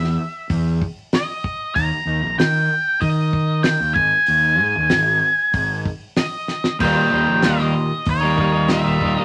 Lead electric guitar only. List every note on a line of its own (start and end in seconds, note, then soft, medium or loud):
0.00 0.77 E5 medium
1.15 1.79 D#5 medium
1.75 2.34 A#5 loud
2.39 3.04 G5 medium
3.01 3.66 D#5 medium
3.63 3.94 G5 medium
3.94 5.80 G#5 medium
6.17 6.76 D#5 medium
6.81 7.45 G5 medium
7.45 8.09 D#5 medium
8.10 8.67 C#5 medium
8.72 9.17 E5 medium
9.17 9.25 D#5 medium